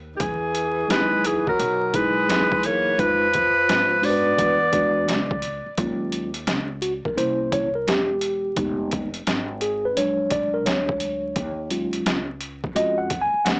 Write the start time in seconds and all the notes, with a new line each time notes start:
Already playing: D#2
0.14 D#3 G4
0.20 E2 E3 G#4, kick, closed hi-hat
0.55 closed hi-hat
0.88 D#2 F#3 G#3 D#4 E4 G4 B4, snare, closed hi-hat
0.97 G#4
1.25 E3 G#4, closed hi-hat
1.47 F#3 A#4, kick
1.59 B1, closed hi-hat
1.93 F#3 G#3 D#4 E4 G#4 B4, kick, closed hi-hat
2.29 E2, snare, closed hi-hat
2.52 kick
2.63 A#3 C#5, closed hi-hat
2.98 F2 F3 G#3 D#4 F4 B4, kick, closed hi-hat
3.33 kick, closed hi-hat
3.69 G#2, snare, closed hi-hat
4.01 G#3 D4 F#4 C5 D5, open hi-hat
4.06 B3 B4
4.38 E2, kick, closed hi-hat
4.72 G#3 D4 F#4 D5, kick, closed hi-hat
5.08 C#2, snare, closed hi-hat
5.31 kick
5.42 closed hi-hat
5.66 muted upright bass stroke
5.77 D#2 F#3 G#3 C#4 F4, kick, closed hi-hat
6.12 closed hi-hat
6.34 closed hi-hat
6.47 C#2, snare, closed hi-hat
6.82 F#4, closed hi-hat
7.05 A#4, muted upright bass stroke, kick
7.16 C2 A#3 C#4 E4 C5, closed hi-hat
7.52 C#5, kick, closed hi-hat
7.75 A#4
7.87 E1 G4, snare, closed hi-hat
8.21 closed hi-hat
8.56 F1 G#3 B3 D#4, kick, closed hi-hat
8.91 kick, closed hi-hat
9.14 closed hi-hat
9.27 G#1, snare, closed hi-hat
9.61 G#4, closed hi-hat
9.85 B4
9.96 A#1 F#3 G#3 D4 C#5, closed hi-hat
10.30 D5, kick, closed hi-hat
10.54 A#4
10.66 D2 C#5, snare, closed hi-hat
10.89 kick
11.00 closed hi-hat
11.36 D#2, kick, closed hi-hat
11.70 F#3 G#3 C#4 F4, closed hi-hat
11.93 closed hi-hat
12.06 C#2, snare, closed hi-hat
12.41 closed hi-hat
12.64 muted upright bass stroke, kick
12.75 F2 G#3 C#4 F4 F#4 D#5, closed hi-hat
12.98 F#5
13.10 kick, closed hi-hat
13.21 G#5
13.34 muted upright bass stroke
13.45 D2 F#5, snare, closed hi-hat